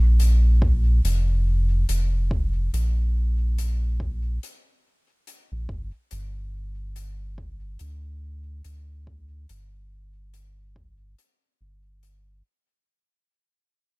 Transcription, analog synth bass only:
0.00 1.01 A#1 medium
1.04 1.85 F1 medium
1.89 2.70 F1 medium
2.73 4.39 A#1 medium
5.52 5.67 A#1 medium
5.69 5.91 G1 medium
6.12 7.77 G1 medium
7.80 8.62 D2 medium
8.65 9.46 D2 medium
9.49 11.15 G1 medium
11.61 12.42 G1 medium

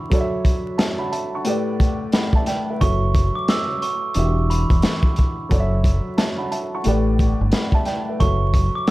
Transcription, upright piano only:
0.00 0.13 E3 medium
0.00 0.14 D4 medium
0.00 0.11 F#4 medium
0.00 0.14 G4 medium
0.00 0.10 E5 medium
0.10 1.43 F#3 medium
0.10 1.43 F#4 medium
0.10 1.44 A4 medium
0.10 1.44 C#5 medium
0.14 0.21 D5 medium
0.21 0.77 E5 medium
0.78 0.99 E5 medium
0.78 0.98 A5 medium
0.99 1.12 F#5 medium
0.99 1.11 B5 medium
1.12 1.32 E5 medium
1.12 1.32 A5 medium
1.35 1.67 F#5 medium
1.35 1.66 C#6 medium
1.45 2.78 A2 medium
1.45 2.78 A3 medium
1.45 2.79 G4 medium
1.45 2.13 B4 medium
1.45 2.13 D5 medium
2.13 2.34 F#5 medium
2.13 2.33 B5 medium
2.35 2.47 E5 medium
2.35 2.47 A5 medium
2.47 2.67 D5 medium
2.47 2.67 G5 medium
2.70 3.01 B4 medium
2.70 2.83 E5 medium
2.81 4.13 F#3 medium
2.81 4.13 F#4 medium
2.81 4.14 A4 medium
2.81 4.15 C#5 medium
2.81 4.15 E5 medium
4.15 5.48 E3 medium
4.15 5.48 D4 medium
4.15 5.49 F#4 medium
4.15 5.49 G4 medium
4.19 5.50 E5 medium
5.49 6.82 F#3 medium
5.49 6.83 F#4 medium
5.49 6.83 A4 medium
5.49 6.84 C#5 medium
5.53 5.60 D5 medium
5.60 6.16 E5 medium
6.18 6.38 E5 medium
6.18 6.38 A5 medium
6.38 6.51 F#5 medium
6.38 6.51 B5 medium
6.51 6.72 E5 medium
6.51 6.72 A5 medium
6.75 7.06 F#5 medium
6.75 7.06 C#6 medium
6.84 8.17 A2 medium
6.84 8.18 A3 medium
6.84 8.18 G4 medium
6.84 7.53 B4 medium
6.84 7.53 D5 medium
7.53 7.73 F#5 medium
7.53 7.73 B5 medium
7.75 7.87 E5 medium
7.75 7.86 A5 medium
7.86 8.07 D5 medium
7.86 8.06 G5 medium
8.09 8.41 B4 medium
8.09 8.22 E5 medium
8.19 8.90 F#3 medium
8.19 8.90 F#4 medium
8.19 8.90 A4 medium
8.19 8.90 C#5 medium
8.19 8.90 E5 medium

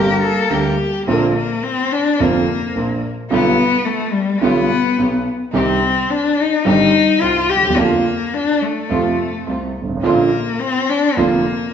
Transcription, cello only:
0.00 0.21 G4 medium
0.22 0.53 A4 medium
0.51 1.07 G4 medium
1.07 1.34 A#3 medium
1.36 1.65 A#3 medium
1.63 1.94 C4 medium
1.93 2.22 D4 medium
2.20 3.03 A#3 medium
3.31 3.86 B3 loud
3.85 4.14 A3 medium
4.12 4.42 G3 medium
4.40 5.25 B3 medium
5.55 6.12 C4 medium
6.11 6.42 D4 medium
6.40 6.66 D#4 medium
6.67 7.23 D#4 loud
7.21 7.51 F4 loud
7.50 7.79 G4 loud
7.78 8.36 A#3 medium
8.34 8.63 D4 medium
8.62 9.76 A3 medium
10.04 10.61 A#3 medium
10.60 10.91 C4 medium
10.89 11.18 D4 medium
11.17 11.73 A#3 medium

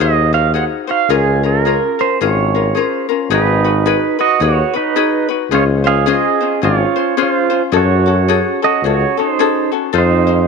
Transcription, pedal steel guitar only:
0.01 0.34 D#5 medium
0.34 0.54 F5 medium
0.55 0.64 F#5 medium
0.91 1.10 F5 medium
1.13 1.46 G#4 medium
1.46 2.01 A#4 medium
2.01 2.21 C5 medium
2.22 2.79 C#5 medium
2.79 3.06 C5 medium
3.34 4.17 D#4 medium
3.34 4.24 B4 medium
4.21 4.41 F#4 medium
4.21 4.43 D#5 loud
4.43 4.74 F#4 medium
4.43 4.73 C#5 medium
4.76 5.27 D#4 medium
4.76 5.27 B4 medium
5.54 5.63 F4 medium
5.54 5.63 C#5 medium
5.87 6.07 G#4 medium
5.87 6.06 F5 medium
6.10 6.60 G#4 medium
6.10 6.65 D#5 medium
6.64 7.15 F4 medium
6.64 7.20 C#5 medium
7.22 7.62 F4 medium
7.22 7.61 C5 medium
7.77 8.60 F#4 medium
7.77 8.66 C#5 medium
8.64 8.84 F#4 medium
8.64 8.85 D#5 medium
8.87 9.16 F#4 medium
8.87 9.19 C#5 medium
9.20 9.70 D#4 medium
9.20 9.70 C5 medium
9.98 10.47 D#4 medium
9.98 10.47 C5 medium

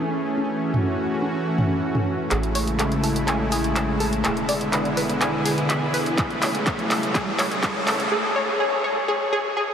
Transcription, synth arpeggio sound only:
2.31 2.37 G#4 medium
2.55 2.61 C#5 medium
2.79 2.85 A4 medium
3.04 3.12 A4 medium
3.28 3.36 G#5 medium
3.52 3.57 G#4 medium
3.76 3.82 A5 medium
4.00 4.06 A4 medium
4.24 4.30 G#4 medium
4.49 4.54 D5 medium
4.73 4.78 B4 medium
4.97 5.05 B4 medium
5.21 5.30 G#5 medium
5.45 5.51 G#4 medium
5.70 5.75 B5 medium
5.94 5.99 B4 medium
6.18 6.24 G#4 medium
6.42 6.48 C#5 medium
6.66 6.72 A4 medium
6.91 6.99 A4 medium
7.15 7.20 G#4 medium
7.39 7.45 C#5 medium
7.63 7.69 A4 medium
7.87 7.96 A4 medium
8.12 8.17 G#4 medium
8.36 8.41 C#5 medium
8.60 8.66 G#4 medium
8.84 8.90 C#5 medium
9.08 9.14 G#4 medium
9.33 9.38 G#4 medium
9.57 9.62 G#4 medium

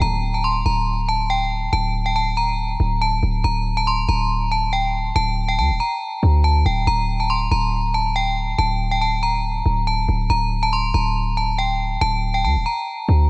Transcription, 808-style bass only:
0.01 0.63 D1 loud
0.66 1.69 D1 loud
1.73 2.76 D1 loud
2.80 3.21 D1 loud
3.23 3.43 D1 loud
3.44 4.06 D1 loud
4.09 5.12 D1 loud
5.16 5.60 D1 loud
5.59 5.71 D2 loud
5.70 5.80 D1 loud
6.23 6.64 D2 loud
6.66 6.86 D1 loud
6.87 7.49 D1 loud
7.51 8.55 D1 loud
8.59 9.62 D1 loud
9.66 10.07 D1 loud
10.09 10.29 D1 loud
10.30 10.92 D1 loud
10.94 11.97 D1 loud
12.01 12.46 D1 loud
12.44 12.57 D2 loud
12.56 12.65 D1 loud
13.09 13.30 D2 loud

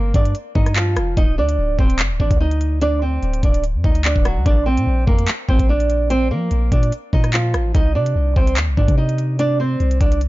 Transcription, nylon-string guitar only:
0.00 0.12 A#3 medium
0.00 0.12 A#4 medium
0.15 0.34 D4 medium
0.15 0.34 D5 medium
0.55 0.75 D#4 medium
0.55 0.75 D#5 medium
0.76 1.15 F3 medium
0.76 1.15 F4 medium
1.17 1.36 D#4 loud
1.17 1.37 D#5 medium
1.38 1.76 D4 medium
1.38 1.77 D5 medium
1.79 1.98 C4 medium
1.79 1.99 C5 medium
2.20 2.39 D4 medium
2.20 2.40 D5 medium
2.40 2.79 D#4 medium
2.40 2.79 D#5 medium
2.82 3.01 D4 loud
2.82 3.01 D5 medium
3.02 3.41 C4 medium
3.02 3.41 C5 medium
3.44 3.63 D4 medium
3.44 3.63 D5 medium
3.84 4.04 D#4 medium
3.84 4.04 D#5 medium
4.05 4.24 D4 medium
4.05 4.25 D5 medium
4.26 4.45 F#3 medium
4.26 4.45 F#4 medium
4.46 4.65 D4 loud
4.46 4.66 D5 medium
4.66 5.05 C4 medium
4.66 5.05 C5 medium
5.07 5.27 A#3 medium
5.07 5.27 A#4 medium
5.49 5.68 C4 medium
5.49 5.68 C5 medium
5.69 6.08 D4 medium
5.69 6.08 D5 medium
6.10 6.30 C4 loud
6.10 6.30 C5 medium
6.31 6.70 A#3 medium
6.31 6.70 A#4 medium
6.72 6.91 D4 medium
6.72 6.92 D5 medium
7.13 7.32 D#4 medium
7.13 7.33 D#5 medium
7.34 7.73 F3 medium
7.34 7.72 F4 medium
7.75 7.94 D#4 loud
7.75 7.94 D#5 medium
7.95 8.34 D4 medium
7.95 8.34 D5 medium
8.36 8.56 C4 medium
8.36 8.56 C5 medium
8.78 8.97 D4 medium
8.78 8.97 D5 medium
8.98 9.36 D#4 medium
8.98 9.37 D#5 medium
9.39 9.58 D4 loud
9.39 9.59 D5 medium
9.60 9.98 C4 medium
9.60 9.99 C5 medium
10.01 10.20 D4 medium
10.01 10.20 D5 medium

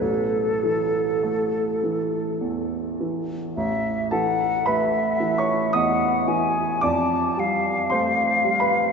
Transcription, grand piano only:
0.01 3.53 A1 soft
0.63 1.59 E3 soft
1.23 2.17 A3 soft
1.83 2.76 E3 soft
2.41 3.35 E2 soft
3.00 3.58 E3 soft
3.57 6.79 A1 medium
4.11 4.99 E3 soft
4.11 4.63 A4 medium
4.11 4.66 A5 medium
4.66 5.53 A3 soft
4.66 5.35 B4 medium
4.66 5.38 B5 medium
5.20 6.06 E3 soft
5.38 5.72 C#5 medium
5.38 5.74 C#6 medium
5.73 6.61 E2 soft
5.73 6.79 D#5 medium
5.73 6.82 D#6 medium
6.28 6.83 E3 soft
6.81 8.92 F2 medium
6.81 7.87 D5 medium
6.81 7.90 D6 medium
7.37 8.22 G3 soft
7.90 8.74 A3 soft
7.90 8.56 C5 medium
7.90 8.60 C6 medium
8.44 8.92 G3 soft
8.60 8.92 B4 soft
8.60 8.92 B5 medium

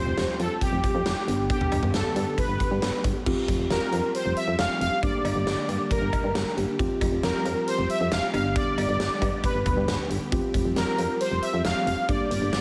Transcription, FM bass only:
0.07 0.14 F1 loud
0.17 0.25 F1 loud
0.40 0.48 F2 loud
0.73 0.81 F1 loud
0.95 1.03 F2 loud
1.06 1.14 F1 loud
1.28 1.52 G1 loud
1.72 1.80 G1 loud
1.83 1.91 G1 loud
1.94 2.02 G1 loud
2.16 2.24 G2 loud
2.49 2.57 G1 medium
2.71 2.79 G2 loud
2.82 2.90 G1 loud
3.04 3.12 G1 loud
3.26 3.34 F1 loud
3.48 3.56 F1 loud
3.59 3.67 F1 loud
3.71 3.79 F1 loud
3.93 4.01 F2 loud
4.26 4.34 F1 loud
4.48 4.56 F2 loud
4.59 4.67 F1 medium
4.81 4.89 F1 loud
5.03 5.11 G1 loud
5.25 5.33 G1 loud
5.36 5.44 G1 loud
5.47 5.55 G1 loud
5.69 5.77 G2 loud
6.02 6.10 G1 loud
6.24 6.32 G2 loud
6.35 6.43 G1 loud
6.57 6.65 G1 loud
6.79 6.87 F1 loud
7.01 7.09 F1 loud
7.12 7.20 F1 medium
7.23 7.31 F1 loud
7.45 7.53 F2 loud
7.78 7.86 F1 loud
8.01 8.09 F2 loud
8.12 8.20 F1 loud
8.34 8.58 G1 loud
8.78 8.86 G1 loud
8.89 8.97 G1 loud
9.00 9.08 G1 loud
9.22 9.30 G2 loud
9.55 9.63 G1 medium
9.77 9.85 G2 loud
9.88 9.96 G1 loud
10.10 10.18 G1 loud
10.32 10.40 F1 loud
10.54 10.62 F1 loud
10.65 10.73 F1 loud
10.76 10.84 F1 loud
10.98 11.06 F2 loud
11.31 11.39 F1 medium
11.54 11.62 F2 loud
11.65 11.73 F1 loud
11.87 11.95 F1 loud
12.09 12.17 G1 loud
12.31 12.39 G1 loud
12.42 12.50 G1 loud
12.53 12.61 G1 loud

